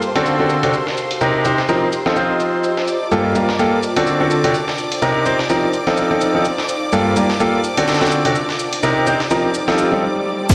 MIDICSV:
0, 0, Header, 1, 7, 480
1, 0, Start_track
1, 0, Tempo, 476190
1, 982, Time_signature, 4, 2, 24, 8
1, 10633, End_track
2, 0, Start_track
2, 0, Title_t, "Violin section"
2, 0, Program_c, 0, 48
2, 0, Note_on_c, 0, 72, 79
2, 0, Note_on_c, 0, 84, 75
2, 2901, Note_on_c, 0, 74, 75
2, 2901, Note_on_c, 0, 86, 77
2, 2912, Note_off_c, 0, 84, 0
2, 2913, Note_off_c, 0, 72, 0
2, 10581, Note_on_c, 0, 69, 84
2, 10581, Note_on_c, 0, 81, 89
2, 10592, Note_off_c, 0, 74, 0
2, 10592, Note_off_c, 0, 86, 0
2, 10633, Note_off_c, 0, 69, 0
2, 10633, Note_off_c, 0, 81, 0
2, 10633, End_track
3, 0, Start_track
3, 0, Title_t, "Ambient pad"
3, 0, Program_c, 1, 92
3, 0, Note_on_c, 1, 81, 85
3, 356, Note_on_c, 1, 72, 84
3, 741, Note_off_c, 1, 81, 0
3, 741, Note_on_c, 1, 67, 71
3, 1290, Note_on_c, 1, 75, 72
3, 1941, Note_on_c, 1, 65, 68
3, 2337, Note_off_c, 1, 67, 0
3, 2379, Note_on_c, 1, 81, 81
3, 2902, Note_off_c, 1, 75, 0
3, 3297, Note_off_c, 1, 72, 0
3, 3861, Note_off_c, 1, 65, 0
3, 4196, Note_on_c, 1, 72, 90
3, 4581, Note_off_c, 1, 81, 0
3, 4582, Note_on_c, 1, 63, 70
3, 6220, Note_on_c, 1, 81, 79
3, 6742, Note_off_c, 1, 63, 0
3, 7137, Note_off_c, 1, 72, 0
3, 8035, Note_on_c, 1, 72, 79
3, 8421, Note_on_c, 1, 63, 82
3, 8422, Note_off_c, 1, 81, 0
3, 8701, Note_on_c, 1, 79, 78
3, 10017, Note_off_c, 1, 79, 0
3, 10101, Note_off_c, 1, 63, 0
3, 10101, Note_off_c, 1, 72, 0
3, 10633, End_track
4, 0, Start_track
4, 0, Title_t, "Grand piano"
4, 0, Program_c, 2, 0
4, 156, Note_on_c, 2, 50, 90
4, 156, Note_on_c, 2, 60, 78
4, 156, Note_on_c, 2, 62, 80
4, 156, Note_on_c, 2, 66, 80
4, 156, Note_on_c, 2, 69, 100
4, 364, Note_off_c, 2, 50, 0
4, 364, Note_off_c, 2, 60, 0
4, 364, Note_off_c, 2, 62, 0
4, 364, Note_off_c, 2, 66, 0
4, 364, Note_off_c, 2, 69, 0
4, 396, Note_on_c, 2, 50, 77
4, 396, Note_on_c, 2, 60, 71
4, 396, Note_on_c, 2, 62, 68
4, 396, Note_on_c, 2, 66, 73
4, 396, Note_on_c, 2, 69, 87
4, 604, Note_off_c, 2, 50, 0
4, 604, Note_off_c, 2, 60, 0
4, 604, Note_off_c, 2, 62, 0
4, 604, Note_off_c, 2, 66, 0
4, 604, Note_off_c, 2, 69, 0
4, 636, Note_on_c, 2, 48, 74
4, 636, Note_on_c, 2, 60, 65
4, 636, Note_on_c, 2, 62, 68
4, 636, Note_on_c, 2, 66, 67
4, 636, Note_on_c, 2, 69, 81
4, 725, Note_off_c, 2, 48, 0
4, 725, Note_off_c, 2, 60, 0
4, 725, Note_off_c, 2, 62, 0
4, 725, Note_off_c, 2, 66, 0
4, 725, Note_off_c, 2, 69, 0
4, 1221, Note_on_c, 2, 48, 89
4, 1221, Note_on_c, 2, 60, 84
4, 1221, Note_on_c, 2, 63, 78
4, 1221, Note_on_c, 2, 67, 80
4, 1221, Note_on_c, 2, 70, 96
4, 1436, Note_off_c, 2, 48, 0
4, 1436, Note_off_c, 2, 60, 0
4, 1436, Note_off_c, 2, 63, 0
4, 1436, Note_off_c, 2, 67, 0
4, 1436, Note_off_c, 2, 70, 0
4, 1461, Note_on_c, 2, 48, 71
4, 1461, Note_on_c, 2, 60, 64
4, 1461, Note_on_c, 2, 63, 65
4, 1461, Note_on_c, 2, 67, 65
4, 1461, Note_on_c, 2, 72, 80
4, 1575, Note_off_c, 2, 48, 0
4, 1575, Note_off_c, 2, 60, 0
4, 1575, Note_off_c, 2, 63, 0
4, 1575, Note_off_c, 2, 67, 0
4, 1575, Note_off_c, 2, 72, 0
4, 1701, Note_on_c, 2, 53, 92
4, 1701, Note_on_c, 2, 60, 81
4, 1701, Note_on_c, 2, 63, 83
4, 1701, Note_on_c, 2, 67, 81
4, 1701, Note_on_c, 2, 70, 103
4, 1873, Note_off_c, 2, 53, 0
4, 1873, Note_off_c, 2, 60, 0
4, 1873, Note_off_c, 2, 63, 0
4, 1873, Note_off_c, 2, 67, 0
4, 1873, Note_off_c, 2, 70, 0
4, 2076, Note_on_c, 2, 53, 82
4, 2076, Note_on_c, 2, 60, 77
4, 2076, Note_on_c, 2, 63, 80
4, 2076, Note_on_c, 2, 65, 78
4, 2076, Note_on_c, 2, 69, 97
4, 2160, Note_off_c, 2, 53, 0
4, 2160, Note_off_c, 2, 60, 0
4, 2160, Note_off_c, 2, 63, 0
4, 2160, Note_off_c, 2, 65, 0
4, 2160, Note_off_c, 2, 69, 0
4, 2181, Note_on_c, 2, 53, 80
4, 2181, Note_on_c, 2, 60, 76
4, 2181, Note_on_c, 2, 63, 72
4, 2181, Note_on_c, 2, 65, 76
4, 2181, Note_on_c, 2, 72, 84
4, 2889, Note_off_c, 2, 53, 0
4, 2889, Note_off_c, 2, 60, 0
4, 2889, Note_off_c, 2, 63, 0
4, 2889, Note_off_c, 2, 65, 0
4, 2889, Note_off_c, 2, 72, 0
4, 3141, Note_on_c, 2, 43, 85
4, 3141, Note_on_c, 2, 58, 81
4, 3141, Note_on_c, 2, 65, 80
4, 3141, Note_on_c, 2, 67, 82
4, 3141, Note_on_c, 2, 69, 99
4, 3356, Note_off_c, 2, 43, 0
4, 3356, Note_off_c, 2, 58, 0
4, 3356, Note_off_c, 2, 65, 0
4, 3356, Note_off_c, 2, 67, 0
4, 3356, Note_off_c, 2, 69, 0
4, 3381, Note_on_c, 2, 58, 68
4, 3381, Note_on_c, 2, 65, 67
4, 3381, Note_on_c, 2, 67, 66
4, 3381, Note_on_c, 2, 70, 78
4, 3382, Note_on_c, 2, 43, 75
4, 3495, Note_off_c, 2, 58, 0
4, 3495, Note_off_c, 2, 65, 0
4, 3495, Note_off_c, 2, 67, 0
4, 3495, Note_off_c, 2, 70, 0
4, 3496, Note_off_c, 2, 43, 0
4, 3621, Note_on_c, 2, 58, 88
4, 3622, Note_on_c, 2, 65, 80
4, 3622, Note_on_c, 2, 67, 81
4, 3622, Note_on_c, 2, 69, 99
4, 3793, Note_off_c, 2, 58, 0
4, 3794, Note_off_c, 2, 65, 0
4, 3794, Note_off_c, 2, 67, 0
4, 3794, Note_off_c, 2, 69, 0
4, 3996, Note_on_c, 2, 50, 88
4, 3996, Note_on_c, 2, 60, 79
4, 3996, Note_on_c, 2, 62, 81
4, 3996, Note_on_c, 2, 66, 79
4, 3996, Note_on_c, 2, 69, 95
4, 4204, Note_off_c, 2, 50, 0
4, 4204, Note_off_c, 2, 60, 0
4, 4204, Note_off_c, 2, 62, 0
4, 4204, Note_off_c, 2, 66, 0
4, 4204, Note_off_c, 2, 69, 0
4, 4236, Note_on_c, 2, 50, 79
4, 4236, Note_on_c, 2, 60, 71
4, 4236, Note_on_c, 2, 62, 70
4, 4236, Note_on_c, 2, 66, 71
4, 4236, Note_on_c, 2, 69, 83
4, 4444, Note_off_c, 2, 50, 0
4, 4444, Note_off_c, 2, 60, 0
4, 4444, Note_off_c, 2, 62, 0
4, 4444, Note_off_c, 2, 66, 0
4, 4444, Note_off_c, 2, 69, 0
4, 4476, Note_on_c, 2, 48, 75
4, 4476, Note_on_c, 2, 60, 67
4, 4476, Note_on_c, 2, 62, 68
4, 4476, Note_on_c, 2, 66, 64
4, 4476, Note_on_c, 2, 69, 77
4, 4565, Note_off_c, 2, 48, 0
4, 4565, Note_off_c, 2, 60, 0
4, 4565, Note_off_c, 2, 62, 0
4, 4565, Note_off_c, 2, 66, 0
4, 4565, Note_off_c, 2, 69, 0
4, 5061, Note_on_c, 2, 48, 88
4, 5061, Note_on_c, 2, 60, 82
4, 5061, Note_on_c, 2, 63, 81
4, 5061, Note_on_c, 2, 67, 80
4, 5061, Note_on_c, 2, 70, 103
4, 5276, Note_off_c, 2, 48, 0
4, 5276, Note_off_c, 2, 60, 0
4, 5276, Note_off_c, 2, 63, 0
4, 5276, Note_off_c, 2, 67, 0
4, 5276, Note_off_c, 2, 70, 0
4, 5301, Note_on_c, 2, 48, 68
4, 5301, Note_on_c, 2, 60, 68
4, 5301, Note_on_c, 2, 63, 65
4, 5301, Note_on_c, 2, 67, 66
4, 5302, Note_on_c, 2, 72, 83
4, 5415, Note_off_c, 2, 48, 0
4, 5415, Note_off_c, 2, 60, 0
4, 5415, Note_off_c, 2, 63, 0
4, 5415, Note_off_c, 2, 67, 0
4, 5415, Note_off_c, 2, 72, 0
4, 5541, Note_on_c, 2, 60, 81
4, 5541, Note_on_c, 2, 63, 83
4, 5541, Note_on_c, 2, 67, 83
4, 5541, Note_on_c, 2, 70, 95
4, 5542, Note_on_c, 2, 53, 90
4, 5713, Note_off_c, 2, 53, 0
4, 5713, Note_off_c, 2, 60, 0
4, 5713, Note_off_c, 2, 63, 0
4, 5713, Note_off_c, 2, 67, 0
4, 5713, Note_off_c, 2, 70, 0
4, 5916, Note_on_c, 2, 53, 86
4, 5916, Note_on_c, 2, 60, 80
4, 5916, Note_on_c, 2, 63, 77
4, 5916, Note_on_c, 2, 65, 80
4, 5916, Note_on_c, 2, 69, 93
4, 6124, Note_off_c, 2, 53, 0
4, 6124, Note_off_c, 2, 60, 0
4, 6124, Note_off_c, 2, 63, 0
4, 6124, Note_off_c, 2, 65, 0
4, 6124, Note_off_c, 2, 69, 0
4, 6156, Note_on_c, 2, 53, 76
4, 6156, Note_on_c, 2, 60, 72
4, 6156, Note_on_c, 2, 63, 71
4, 6156, Note_on_c, 2, 65, 70
4, 6156, Note_on_c, 2, 69, 87
4, 6364, Note_off_c, 2, 53, 0
4, 6364, Note_off_c, 2, 60, 0
4, 6364, Note_off_c, 2, 63, 0
4, 6364, Note_off_c, 2, 65, 0
4, 6364, Note_off_c, 2, 69, 0
4, 6397, Note_on_c, 2, 53, 77
4, 6397, Note_on_c, 2, 60, 66
4, 6397, Note_on_c, 2, 63, 69
4, 6397, Note_on_c, 2, 65, 65
4, 6397, Note_on_c, 2, 69, 82
4, 6485, Note_off_c, 2, 53, 0
4, 6485, Note_off_c, 2, 60, 0
4, 6485, Note_off_c, 2, 63, 0
4, 6485, Note_off_c, 2, 65, 0
4, 6485, Note_off_c, 2, 69, 0
4, 6982, Note_on_c, 2, 43, 90
4, 6982, Note_on_c, 2, 58, 85
4, 6982, Note_on_c, 2, 65, 80
4, 6982, Note_on_c, 2, 67, 79
4, 6982, Note_on_c, 2, 69, 96
4, 7196, Note_off_c, 2, 43, 0
4, 7196, Note_off_c, 2, 58, 0
4, 7196, Note_off_c, 2, 65, 0
4, 7196, Note_off_c, 2, 67, 0
4, 7196, Note_off_c, 2, 69, 0
4, 7222, Note_on_c, 2, 43, 74
4, 7222, Note_on_c, 2, 58, 66
4, 7222, Note_on_c, 2, 65, 66
4, 7222, Note_on_c, 2, 67, 67
4, 7222, Note_on_c, 2, 70, 80
4, 7336, Note_off_c, 2, 43, 0
4, 7336, Note_off_c, 2, 58, 0
4, 7336, Note_off_c, 2, 65, 0
4, 7336, Note_off_c, 2, 67, 0
4, 7336, Note_off_c, 2, 70, 0
4, 7462, Note_on_c, 2, 58, 91
4, 7462, Note_on_c, 2, 65, 85
4, 7462, Note_on_c, 2, 67, 86
4, 7462, Note_on_c, 2, 69, 97
4, 7633, Note_off_c, 2, 65, 0
4, 7633, Note_off_c, 2, 67, 0
4, 7633, Note_off_c, 2, 69, 0
4, 7634, Note_off_c, 2, 58, 0
4, 7836, Note_on_c, 2, 50, 91
4, 7836, Note_on_c, 2, 60, 84
4, 7836, Note_on_c, 2, 62, 78
4, 7836, Note_on_c, 2, 66, 82
4, 7836, Note_on_c, 2, 69, 100
4, 8044, Note_off_c, 2, 50, 0
4, 8044, Note_off_c, 2, 60, 0
4, 8044, Note_off_c, 2, 62, 0
4, 8044, Note_off_c, 2, 66, 0
4, 8044, Note_off_c, 2, 69, 0
4, 8076, Note_on_c, 2, 62, 69
4, 8076, Note_on_c, 2, 66, 75
4, 8076, Note_on_c, 2, 69, 85
4, 8077, Note_on_c, 2, 50, 76
4, 8077, Note_on_c, 2, 60, 72
4, 8284, Note_off_c, 2, 50, 0
4, 8284, Note_off_c, 2, 60, 0
4, 8284, Note_off_c, 2, 62, 0
4, 8284, Note_off_c, 2, 66, 0
4, 8284, Note_off_c, 2, 69, 0
4, 8316, Note_on_c, 2, 48, 78
4, 8316, Note_on_c, 2, 66, 65
4, 8317, Note_on_c, 2, 60, 69
4, 8317, Note_on_c, 2, 62, 67
4, 8317, Note_on_c, 2, 69, 80
4, 8405, Note_off_c, 2, 48, 0
4, 8405, Note_off_c, 2, 60, 0
4, 8405, Note_off_c, 2, 62, 0
4, 8405, Note_off_c, 2, 66, 0
4, 8405, Note_off_c, 2, 69, 0
4, 8901, Note_on_c, 2, 48, 93
4, 8901, Note_on_c, 2, 60, 85
4, 8901, Note_on_c, 2, 63, 83
4, 8901, Note_on_c, 2, 67, 82
4, 8901, Note_on_c, 2, 70, 99
4, 9116, Note_off_c, 2, 48, 0
4, 9116, Note_off_c, 2, 60, 0
4, 9116, Note_off_c, 2, 63, 0
4, 9116, Note_off_c, 2, 67, 0
4, 9116, Note_off_c, 2, 70, 0
4, 9142, Note_on_c, 2, 48, 69
4, 9142, Note_on_c, 2, 60, 67
4, 9142, Note_on_c, 2, 63, 68
4, 9142, Note_on_c, 2, 67, 67
4, 9142, Note_on_c, 2, 72, 81
4, 9256, Note_off_c, 2, 48, 0
4, 9256, Note_off_c, 2, 60, 0
4, 9256, Note_off_c, 2, 63, 0
4, 9256, Note_off_c, 2, 67, 0
4, 9256, Note_off_c, 2, 72, 0
4, 9382, Note_on_c, 2, 53, 91
4, 9382, Note_on_c, 2, 60, 83
4, 9382, Note_on_c, 2, 63, 81
4, 9382, Note_on_c, 2, 67, 80
4, 9382, Note_on_c, 2, 70, 105
4, 9554, Note_off_c, 2, 53, 0
4, 9554, Note_off_c, 2, 60, 0
4, 9554, Note_off_c, 2, 63, 0
4, 9554, Note_off_c, 2, 67, 0
4, 9554, Note_off_c, 2, 70, 0
4, 9756, Note_on_c, 2, 53, 92
4, 9756, Note_on_c, 2, 60, 81
4, 9756, Note_on_c, 2, 63, 80
4, 9756, Note_on_c, 2, 65, 83
4, 9756, Note_on_c, 2, 69, 98
4, 9964, Note_off_c, 2, 53, 0
4, 9964, Note_off_c, 2, 60, 0
4, 9964, Note_off_c, 2, 63, 0
4, 9964, Note_off_c, 2, 65, 0
4, 9964, Note_off_c, 2, 69, 0
4, 9996, Note_on_c, 2, 53, 80
4, 9996, Note_on_c, 2, 60, 71
4, 9996, Note_on_c, 2, 63, 73
4, 9996, Note_on_c, 2, 65, 73
4, 9996, Note_on_c, 2, 69, 85
4, 10101, Note_off_c, 2, 53, 0
4, 10101, Note_off_c, 2, 69, 0
4, 10102, Note_off_c, 2, 60, 0
4, 10102, Note_off_c, 2, 63, 0
4, 10102, Note_off_c, 2, 65, 0
4, 10633, End_track
5, 0, Start_track
5, 0, Title_t, "Downlifter"
5, 0, Program_c, 3, 103
5, 10581, Note_on_c, 3, 60, 78
5, 10633, Note_off_c, 3, 60, 0
5, 10633, End_track
6, 0, Start_track
6, 0, Title_t, "Swell"
6, 0, Program_c, 4, 103
6, 9621, Note_on_c, 4, 60, 73
6, 10581, Note_off_c, 4, 60, 0
6, 10633, End_track
7, 0, Start_track
7, 0, Title_t, "Drums"
7, 21, Note_on_c, 9, 82, 84
7, 122, Note_off_c, 9, 82, 0
7, 157, Note_on_c, 9, 42, 44
7, 257, Note_off_c, 9, 42, 0
7, 261, Note_on_c, 9, 82, 65
7, 362, Note_off_c, 9, 82, 0
7, 501, Note_on_c, 9, 82, 81
7, 602, Note_off_c, 9, 82, 0
7, 636, Note_on_c, 9, 42, 40
7, 737, Note_off_c, 9, 42, 0
7, 741, Note_on_c, 9, 82, 64
7, 842, Note_off_c, 9, 82, 0
7, 877, Note_on_c, 9, 38, 42
7, 977, Note_off_c, 9, 38, 0
7, 982, Note_on_c, 9, 82, 79
7, 1082, Note_off_c, 9, 82, 0
7, 1116, Note_on_c, 9, 42, 39
7, 1217, Note_off_c, 9, 42, 0
7, 1221, Note_on_c, 9, 82, 68
7, 1322, Note_off_c, 9, 82, 0
7, 1461, Note_on_c, 9, 82, 86
7, 1562, Note_off_c, 9, 82, 0
7, 1596, Note_on_c, 9, 38, 45
7, 1697, Note_off_c, 9, 38, 0
7, 1701, Note_on_c, 9, 82, 63
7, 1802, Note_off_c, 9, 82, 0
7, 1941, Note_on_c, 9, 82, 82
7, 2042, Note_off_c, 9, 82, 0
7, 2076, Note_on_c, 9, 38, 47
7, 2177, Note_off_c, 9, 38, 0
7, 2181, Note_on_c, 9, 82, 63
7, 2282, Note_off_c, 9, 82, 0
7, 2421, Note_on_c, 9, 82, 82
7, 2522, Note_off_c, 9, 82, 0
7, 2661, Note_on_c, 9, 82, 62
7, 2762, Note_off_c, 9, 82, 0
7, 2796, Note_on_c, 9, 38, 44
7, 2897, Note_off_c, 9, 38, 0
7, 2901, Note_on_c, 9, 82, 80
7, 3002, Note_off_c, 9, 82, 0
7, 3142, Note_on_c, 9, 82, 64
7, 3242, Note_off_c, 9, 82, 0
7, 3381, Note_on_c, 9, 82, 81
7, 3482, Note_off_c, 9, 82, 0
7, 3516, Note_on_c, 9, 38, 52
7, 3617, Note_off_c, 9, 38, 0
7, 3622, Note_on_c, 9, 82, 63
7, 3722, Note_off_c, 9, 82, 0
7, 3861, Note_on_c, 9, 82, 83
7, 3962, Note_off_c, 9, 82, 0
7, 3996, Note_on_c, 9, 42, 45
7, 4097, Note_off_c, 9, 42, 0
7, 4101, Note_on_c, 9, 82, 61
7, 4202, Note_off_c, 9, 82, 0
7, 4341, Note_on_c, 9, 82, 81
7, 4442, Note_off_c, 9, 82, 0
7, 4476, Note_on_c, 9, 42, 41
7, 4577, Note_off_c, 9, 42, 0
7, 4581, Note_on_c, 9, 82, 64
7, 4682, Note_off_c, 9, 82, 0
7, 4716, Note_on_c, 9, 38, 42
7, 4817, Note_off_c, 9, 38, 0
7, 4821, Note_on_c, 9, 82, 78
7, 4922, Note_off_c, 9, 82, 0
7, 4956, Note_on_c, 9, 42, 43
7, 5057, Note_off_c, 9, 42, 0
7, 5061, Note_on_c, 9, 82, 65
7, 5162, Note_off_c, 9, 82, 0
7, 5301, Note_on_c, 9, 82, 85
7, 5402, Note_off_c, 9, 82, 0
7, 5436, Note_on_c, 9, 38, 45
7, 5537, Note_off_c, 9, 38, 0
7, 5542, Note_on_c, 9, 82, 65
7, 5642, Note_off_c, 9, 82, 0
7, 5781, Note_on_c, 9, 82, 81
7, 5882, Note_off_c, 9, 82, 0
7, 5916, Note_on_c, 9, 38, 49
7, 6017, Note_off_c, 9, 38, 0
7, 6021, Note_on_c, 9, 82, 64
7, 6122, Note_off_c, 9, 82, 0
7, 6261, Note_on_c, 9, 82, 84
7, 6362, Note_off_c, 9, 82, 0
7, 6502, Note_on_c, 9, 82, 67
7, 6602, Note_off_c, 9, 82, 0
7, 6637, Note_on_c, 9, 38, 45
7, 6737, Note_off_c, 9, 38, 0
7, 6741, Note_on_c, 9, 82, 84
7, 6842, Note_off_c, 9, 82, 0
7, 6981, Note_on_c, 9, 82, 68
7, 7082, Note_off_c, 9, 82, 0
7, 7221, Note_on_c, 9, 82, 84
7, 7322, Note_off_c, 9, 82, 0
7, 7356, Note_on_c, 9, 38, 53
7, 7457, Note_off_c, 9, 38, 0
7, 7461, Note_on_c, 9, 82, 60
7, 7562, Note_off_c, 9, 82, 0
7, 7701, Note_on_c, 9, 82, 87
7, 7802, Note_off_c, 9, 82, 0
7, 7836, Note_on_c, 9, 42, 46
7, 7937, Note_off_c, 9, 42, 0
7, 7941, Note_on_c, 9, 38, 82
7, 7941, Note_on_c, 9, 82, 61
7, 8009, Note_off_c, 9, 38, 0
7, 8009, Note_off_c, 9, 82, 0
7, 8009, Note_on_c, 9, 38, 84
7, 8009, Note_on_c, 9, 82, 64
7, 8076, Note_off_c, 9, 38, 0
7, 8076, Note_off_c, 9, 82, 0
7, 8076, Note_on_c, 9, 38, 77
7, 8076, Note_on_c, 9, 82, 62
7, 8129, Note_off_c, 9, 38, 0
7, 8129, Note_off_c, 9, 82, 0
7, 8129, Note_on_c, 9, 38, 82
7, 8129, Note_on_c, 9, 82, 60
7, 8181, Note_off_c, 9, 82, 0
7, 8181, Note_on_c, 9, 82, 85
7, 8230, Note_off_c, 9, 38, 0
7, 8282, Note_off_c, 9, 82, 0
7, 8316, Note_on_c, 9, 42, 41
7, 8417, Note_off_c, 9, 42, 0
7, 8422, Note_on_c, 9, 82, 64
7, 8522, Note_off_c, 9, 82, 0
7, 8556, Note_on_c, 9, 38, 42
7, 8657, Note_off_c, 9, 38, 0
7, 8661, Note_on_c, 9, 82, 82
7, 8762, Note_off_c, 9, 82, 0
7, 8796, Note_on_c, 9, 42, 43
7, 8897, Note_off_c, 9, 42, 0
7, 8901, Note_on_c, 9, 82, 66
7, 9002, Note_off_c, 9, 82, 0
7, 9141, Note_on_c, 9, 82, 86
7, 9242, Note_off_c, 9, 82, 0
7, 9276, Note_on_c, 9, 38, 47
7, 9377, Note_off_c, 9, 38, 0
7, 9381, Note_on_c, 9, 82, 62
7, 9482, Note_off_c, 9, 82, 0
7, 9621, Note_on_c, 9, 82, 82
7, 9722, Note_off_c, 9, 82, 0
7, 9756, Note_on_c, 9, 38, 50
7, 9857, Note_off_c, 9, 38, 0
7, 9861, Note_on_c, 9, 82, 65
7, 9962, Note_off_c, 9, 82, 0
7, 10581, Note_on_c, 9, 36, 117
7, 10581, Note_on_c, 9, 42, 89
7, 10581, Note_on_c, 9, 49, 105
7, 10581, Note_on_c, 9, 82, 86
7, 10582, Note_off_c, 9, 82, 0
7, 10582, Note_on_c, 9, 82, 46
7, 10633, Note_off_c, 9, 36, 0
7, 10633, Note_off_c, 9, 42, 0
7, 10633, Note_off_c, 9, 49, 0
7, 10633, Note_off_c, 9, 82, 0
7, 10633, End_track
0, 0, End_of_file